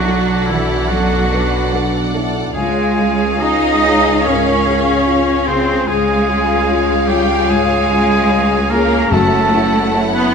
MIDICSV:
0, 0, Header, 1, 11, 480
1, 0, Start_track
1, 0, Tempo, 826446
1, 1483, Time_signature, 4, 2, 24, 8
1, 1483, Tempo, 848656
1, 2443, Tempo, 811908
1, 6045, End_track
2, 0, Start_track
2, 0, Title_t, "Flute"
2, 0, Program_c, 0, 73
2, 0, Note_on_c, 0, 78, 77
2, 290, Note_on_c, 0, 76, 65
2, 299, Note_off_c, 0, 78, 0
2, 523, Note_on_c, 0, 78, 78
2, 532, Note_off_c, 0, 76, 0
2, 1243, Note_off_c, 0, 78, 0
2, 1485, Note_on_c, 0, 80, 75
2, 1977, Note_on_c, 0, 87, 88
2, 1985, Note_off_c, 0, 80, 0
2, 2459, Note_on_c, 0, 85, 82
2, 2468, Note_off_c, 0, 87, 0
2, 3164, Note_on_c, 0, 84, 80
2, 3173, Note_off_c, 0, 85, 0
2, 3399, Note_on_c, 0, 80, 83
2, 3408, Note_off_c, 0, 84, 0
2, 3986, Note_off_c, 0, 80, 0
2, 4132, Note_on_c, 0, 79, 72
2, 4359, Note_on_c, 0, 80, 90
2, 4368, Note_off_c, 0, 79, 0
2, 5084, Note_on_c, 0, 82, 90
2, 5093, Note_off_c, 0, 80, 0
2, 5317, Note_on_c, 0, 81, 82
2, 5326, Note_off_c, 0, 82, 0
2, 5919, Note_on_c, 0, 83, 84
2, 5928, Note_off_c, 0, 81, 0
2, 6045, Note_off_c, 0, 83, 0
2, 6045, End_track
3, 0, Start_track
3, 0, Title_t, "Violin section"
3, 0, Program_c, 1, 48
3, 0, Note_on_c, 1, 78, 66
3, 1459, Note_off_c, 1, 78, 0
3, 1490, Note_on_c, 1, 77, 70
3, 3399, Note_off_c, 1, 77, 0
3, 3406, Note_on_c, 1, 77, 78
3, 5295, Note_off_c, 1, 77, 0
3, 5323, Note_on_c, 1, 78, 81
3, 6045, Note_off_c, 1, 78, 0
3, 6045, End_track
4, 0, Start_track
4, 0, Title_t, "Violin section"
4, 0, Program_c, 2, 48
4, 0, Note_on_c, 2, 69, 63
4, 0, Note_on_c, 2, 74, 65
4, 1464, Note_off_c, 2, 69, 0
4, 1464, Note_off_c, 2, 74, 0
4, 1479, Note_on_c, 2, 68, 64
4, 1481, Note_on_c, 2, 73, 65
4, 3381, Note_off_c, 2, 68, 0
4, 3396, Note_off_c, 2, 73, 0
4, 3403, Note_on_c, 2, 73, 77
4, 3406, Note_on_c, 2, 68, 69
4, 5294, Note_off_c, 2, 73, 0
4, 5295, Note_off_c, 2, 68, 0
4, 5320, Note_on_c, 2, 64, 78
4, 5322, Note_on_c, 2, 73, 75
4, 6045, Note_off_c, 2, 64, 0
4, 6045, Note_off_c, 2, 73, 0
4, 6045, End_track
5, 0, Start_track
5, 0, Title_t, "French horn section"
5, 0, Program_c, 3, 60
5, 49, Note_on_c, 3, 66, 67
5, 527, Note_on_c, 3, 69, 77
5, 528, Note_off_c, 3, 66, 0
5, 766, Note_off_c, 3, 69, 0
5, 772, Note_on_c, 3, 71, 66
5, 1008, Note_off_c, 3, 71, 0
5, 1018, Note_on_c, 3, 62, 60
5, 1250, Note_off_c, 3, 62, 0
5, 1255, Note_on_c, 3, 64, 63
5, 1489, Note_off_c, 3, 64, 0
5, 1493, Note_on_c, 3, 65, 72
5, 1964, Note_off_c, 3, 65, 0
5, 1974, Note_on_c, 3, 68, 71
5, 2210, Note_off_c, 3, 68, 0
5, 2217, Note_on_c, 3, 68, 70
5, 2448, Note_off_c, 3, 68, 0
5, 2448, Note_on_c, 3, 70, 83
5, 2687, Note_on_c, 3, 68, 70
5, 2688, Note_off_c, 3, 70, 0
5, 2926, Note_off_c, 3, 68, 0
5, 2930, Note_on_c, 3, 65, 71
5, 3166, Note_on_c, 3, 68, 75
5, 3168, Note_off_c, 3, 65, 0
5, 3340, Note_off_c, 3, 68, 0
5, 3412, Note_on_c, 3, 68, 81
5, 3645, Note_off_c, 3, 68, 0
5, 3650, Note_on_c, 3, 65, 82
5, 4843, Note_off_c, 3, 65, 0
5, 4845, Note_on_c, 3, 68, 78
5, 5079, Note_off_c, 3, 68, 0
5, 5086, Note_on_c, 3, 68, 83
5, 5317, Note_off_c, 3, 68, 0
5, 5324, Note_on_c, 3, 66, 83
5, 5562, Note_off_c, 3, 66, 0
5, 5562, Note_on_c, 3, 64, 78
5, 6045, Note_off_c, 3, 64, 0
5, 6045, End_track
6, 0, Start_track
6, 0, Title_t, "Oboe"
6, 0, Program_c, 4, 68
6, 0, Note_on_c, 4, 66, 82
6, 273, Note_on_c, 4, 64, 68
6, 281, Note_off_c, 4, 66, 0
6, 514, Note_on_c, 4, 66, 77
6, 523, Note_off_c, 4, 64, 0
6, 1238, Note_off_c, 4, 66, 0
6, 1475, Note_on_c, 4, 68, 77
6, 1963, Note_on_c, 4, 75, 87
6, 1971, Note_off_c, 4, 68, 0
6, 2441, Note_on_c, 4, 73, 70
6, 2449, Note_off_c, 4, 75, 0
6, 3161, Note_off_c, 4, 73, 0
6, 3165, Note_on_c, 4, 72, 80
6, 3404, Note_on_c, 4, 68, 84
6, 3413, Note_off_c, 4, 72, 0
6, 4115, Note_on_c, 4, 67, 77
6, 4124, Note_off_c, 4, 68, 0
6, 4364, Note_on_c, 4, 68, 90
6, 4373, Note_off_c, 4, 67, 0
6, 5069, Note_on_c, 4, 70, 84
6, 5078, Note_off_c, 4, 68, 0
6, 5321, Note_on_c, 4, 69, 76
6, 5330, Note_off_c, 4, 70, 0
6, 5823, Note_off_c, 4, 69, 0
6, 5923, Note_on_c, 4, 71, 81
6, 6045, Note_off_c, 4, 71, 0
6, 6045, End_track
7, 0, Start_track
7, 0, Title_t, "Viola section"
7, 0, Program_c, 5, 48
7, 0, Note_on_c, 5, 66, 68
7, 269, Note_off_c, 5, 66, 0
7, 282, Note_on_c, 5, 64, 71
7, 521, Note_on_c, 5, 66, 72
7, 524, Note_off_c, 5, 64, 0
7, 1241, Note_off_c, 5, 66, 0
7, 1477, Note_on_c, 5, 68, 75
7, 1943, Note_off_c, 5, 68, 0
7, 1971, Note_on_c, 5, 75, 96
7, 2444, Note_off_c, 5, 75, 0
7, 2447, Note_on_c, 5, 73, 76
7, 3164, Note_on_c, 5, 68, 83
7, 3168, Note_off_c, 5, 73, 0
7, 3395, Note_off_c, 5, 68, 0
7, 3402, Note_on_c, 5, 68, 80
7, 4110, Note_off_c, 5, 68, 0
7, 4129, Note_on_c, 5, 79, 77
7, 4366, Note_on_c, 5, 68, 79
7, 4367, Note_off_c, 5, 79, 0
7, 5080, Note_off_c, 5, 68, 0
7, 5081, Note_on_c, 5, 70, 92
7, 5320, Note_off_c, 5, 70, 0
7, 5327, Note_on_c, 5, 69, 80
7, 5927, Note_off_c, 5, 69, 0
7, 5931, Note_on_c, 5, 71, 81
7, 6045, Note_off_c, 5, 71, 0
7, 6045, End_track
8, 0, Start_track
8, 0, Title_t, "Grand piano"
8, 0, Program_c, 6, 0
8, 0, Control_c, 6, 64, 127
8, 0, Note_on_c, 6, 35, 63
8, 0, Note_on_c, 6, 54, 41
8, 0, Note_on_c, 6, 62, 48
8, 0, Note_on_c, 6, 69, 51
8, 40, Note_off_c, 6, 54, 0
8, 40, Note_on_c, 6, 54, 43
8, 41, Note_off_c, 6, 62, 0
8, 41, Note_on_c, 6, 62, 43
8, 45, Note_off_c, 6, 69, 0
8, 45, Note_on_c, 6, 69, 45
8, 259, Note_off_c, 6, 54, 0
8, 260, Note_off_c, 6, 62, 0
8, 262, Note_off_c, 6, 69, 0
8, 283, Note_on_c, 6, 54, 46
8, 283, Note_on_c, 6, 62, 45
8, 288, Note_on_c, 6, 69, 51
8, 501, Note_off_c, 6, 54, 0
8, 501, Note_off_c, 6, 62, 0
8, 503, Note_off_c, 6, 69, 0
8, 527, Note_on_c, 6, 42, 53
8, 759, Note_off_c, 6, 42, 0
8, 764, Note_on_c, 6, 54, 49
8, 767, Note_on_c, 6, 62, 49
8, 770, Note_on_c, 6, 69, 52
8, 981, Note_off_c, 6, 54, 0
8, 982, Note_off_c, 6, 62, 0
8, 984, Note_off_c, 6, 69, 0
8, 1005, Note_on_c, 6, 54, 42
8, 1006, Note_on_c, 6, 62, 46
8, 1011, Note_on_c, 6, 69, 51
8, 1220, Note_off_c, 6, 54, 0
8, 1221, Note_off_c, 6, 62, 0
8, 1223, Note_off_c, 6, 69, 0
8, 1242, Note_on_c, 6, 54, 45
8, 1245, Note_on_c, 6, 62, 44
8, 1247, Note_on_c, 6, 69, 49
8, 1459, Note_off_c, 6, 54, 0
8, 1460, Note_off_c, 6, 62, 0
8, 1461, Note_off_c, 6, 69, 0
8, 1484, Note_on_c, 6, 37, 64
8, 1493, Control_c, 6, 64, 0
8, 1495, Note_off_c, 6, 35, 0
8, 1572, Control_c, 6, 64, 127
8, 1717, Note_off_c, 6, 37, 0
8, 1725, Note_on_c, 6, 61, 45
8, 1727, Note_on_c, 6, 65, 46
8, 1729, Note_on_c, 6, 68, 51
8, 1947, Note_off_c, 6, 61, 0
8, 1948, Note_off_c, 6, 65, 0
8, 1949, Note_off_c, 6, 68, 0
8, 1977, Note_on_c, 6, 61, 47
8, 1977, Note_on_c, 6, 65, 47
8, 1981, Note_on_c, 6, 68, 52
8, 2189, Note_off_c, 6, 61, 0
8, 2189, Note_off_c, 6, 65, 0
8, 2191, Note_off_c, 6, 68, 0
8, 2216, Note_on_c, 6, 61, 45
8, 2216, Note_on_c, 6, 65, 47
8, 2219, Note_on_c, 6, 68, 55
8, 2424, Note_off_c, 6, 61, 0
8, 2424, Note_off_c, 6, 65, 0
8, 2425, Note_off_c, 6, 68, 0
8, 2449, Note_on_c, 6, 44, 54
8, 2681, Note_off_c, 6, 44, 0
8, 2693, Note_on_c, 6, 61, 52
8, 2695, Note_on_c, 6, 65, 50
8, 2695, Note_on_c, 6, 68, 56
8, 2906, Note_off_c, 6, 61, 0
8, 2907, Note_off_c, 6, 65, 0
8, 2907, Note_off_c, 6, 68, 0
8, 2924, Note_on_c, 6, 61, 48
8, 2925, Note_on_c, 6, 65, 47
8, 2928, Note_on_c, 6, 68, 56
8, 3141, Note_off_c, 6, 61, 0
8, 3142, Note_off_c, 6, 65, 0
8, 3144, Note_off_c, 6, 68, 0
8, 3167, Note_on_c, 6, 49, 47
8, 3171, Note_on_c, 6, 65, 45
8, 3172, Note_on_c, 6, 68, 56
8, 3384, Note_off_c, 6, 49, 0
8, 3386, Note_off_c, 6, 65, 0
8, 3386, Note_off_c, 6, 68, 0
8, 3402, Note_on_c, 6, 37, 65
8, 3418, Control_c, 6, 64, 0
8, 3522, Control_c, 6, 64, 127
8, 3638, Note_off_c, 6, 37, 0
8, 3641, Note_on_c, 6, 61, 49
8, 3643, Note_on_c, 6, 65, 45
8, 3648, Note_on_c, 6, 68, 52
8, 3861, Note_off_c, 6, 61, 0
8, 3861, Note_off_c, 6, 65, 0
8, 3864, Note_off_c, 6, 68, 0
8, 3885, Note_on_c, 6, 61, 47
8, 3891, Note_on_c, 6, 65, 51
8, 3892, Note_on_c, 6, 68, 57
8, 4102, Note_off_c, 6, 61, 0
8, 4105, Note_off_c, 6, 65, 0
8, 4106, Note_off_c, 6, 68, 0
8, 4127, Note_on_c, 6, 61, 54
8, 4130, Note_on_c, 6, 65, 51
8, 4342, Note_off_c, 6, 61, 0
8, 4344, Note_off_c, 6, 65, 0
8, 4363, Note_on_c, 6, 44, 57
8, 4595, Note_off_c, 6, 44, 0
8, 4607, Note_on_c, 6, 61, 58
8, 4608, Note_on_c, 6, 65, 53
8, 4611, Note_on_c, 6, 68, 63
8, 4819, Note_off_c, 6, 61, 0
8, 4820, Note_off_c, 6, 65, 0
8, 4822, Note_off_c, 6, 68, 0
8, 4836, Note_on_c, 6, 61, 54
8, 4838, Note_on_c, 6, 65, 51
8, 4839, Note_on_c, 6, 68, 58
8, 5054, Note_off_c, 6, 61, 0
8, 5055, Note_off_c, 6, 65, 0
8, 5055, Note_off_c, 6, 68, 0
8, 5081, Note_on_c, 6, 61, 51
8, 5081, Note_on_c, 6, 65, 54
8, 5087, Note_on_c, 6, 68, 59
8, 5296, Note_off_c, 6, 61, 0
8, 5296, Note_off_c, 6, 65, 0
8, 5299, Note_off_c, 6, 68, 0
8, 5317, Note_on_c, 6, 42, 72
8, 5330, Control_c, 6, 64, 0
8, 5437, Control_c, 6, 64, 127
8, 5552, Note_off_c, 6, 42, 0
8, 5563, Note_on_c, 6, 61, 56
8, 5564, Note_on_c, 6, 64, 53
8, 5570, Note_on_c, 6, 69, 55
8, 5780, Note_off_c, 6, 61, 0
8, 5780, Note_off_c, 6, 64, 0
8, 5783, Note_off_c, 6, 69, 0
8, 5805, Note_on_c, 6, 61, 51
8, 5806, Note_on_c, 6, 64, 51
8, 5809, Note_on_c, 6, 69, 59
8, 6021, Note_off_c, 6, 61, 0
8, 6022, Note_off_c, 6, 64, 0
8, 6023, Note_off_c, 6, 69, 0
8, 6045, End_track
9, 0, Start_track
9, 0, Title_t, "Cello section"
9, 0, Program_c, 7, 48
9, 0, Note_on_c, 7, 54, 88
9, 269, Note_off_c, 7, 54, 0
9, 288, Note_on_c, 7, 52, 76
9, 527, Note_off_c, 7, 52, 0
9, 528, Note_on_c, 7, 54, 76
9, 1245, Note_off_c, 7, 54, 0
9, 1484, Note_on_c, 7, 56, 89
9, 1946, Note_off_c, 7, 56, 0
9, 1967, Note_on_c, 7, 63, 94
9, 2432, Note_off_c, 7, 63, 0
9, 2443, Note_on_c, 7, 61, 80
9, 3160, Note_on_c, 7, 60, 85
9, 3166, Note_off_c, 7, 61, 0
9, 3402, Note_on_c, 7, 56, 90
9, 3403, Note_off_c, 7, 60, 0
9, 4110, Note_off_c, 7, 56, 0
9, 4117, Note_on_c, 7, 55, 84
9, 4360, Note_on_c, 7, 56, 98
9, 4361, Note_off_c, 7, 55, 0
9, 5075, Note_on_c, 7, 58, 95
9, 5077, Note_off_c, 7, 56, 0
9, 5314, Note_on_c, 7, 57, 85
9, 5317, Note_off_c, 7, 58, 0
9, 5916, Note_on_c, 7, 59, 96
9, 5920, Note_off_c, 7, 57, 0
9, 6037, Note_off_c, 7, 59, 0
9, 6045, End_track
10, 0, Start_track
10, 0, Title_t, "Timpani"
10, 0, Program_c, 8, 47
10, 5317, Note_on_c, 8, 42, 88
10, 6018, Note_off_c, 8, 42, 0
10, 6045, End_track
11, 0, Start_track
11, 0, Title_t, "Double bass section"
11, 0, Program_c, 10, 48
11, 0, Note_on_c, 10, 35, 73
11, 1460, Note_off_c, 10, 35, 0
11, 1482, Note_on_c, 10, 37, 75
11, 3397, Note_off_c, 10, 37, 0
11, 3404, Note_on_c, 10, 37, 76
11, 5294, Note_off_c, 10, 37, 0
11, 5315, Note_on_c, 10, 30, 80
11, 6045, Note_off_c, 10, 30, 0
11, 6045, End_track
0, 0, End_of_file